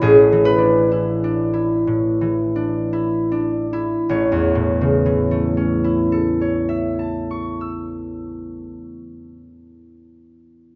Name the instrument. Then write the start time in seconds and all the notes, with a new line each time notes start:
harp
Already playing: E4 E5
0.01 A1 A2 G#4
0.32 E3
0.45 B4
0.58 D4
0.92 E4
1.24 D4
1.53 E4
1.87 A2
2.21 E3
2.56 D4
2.93 E4
3.32 D4
3.73 E4
4.09 A1 C#5
4.32 E2
4.55 A2
4.81 C#3
5.06 E3
5.31 A3
5.57 C#4
5.84 E4
6.12 A4
6.41 C#5
6.69 E5
6.99 A5
7.31 C#6
7.61 E6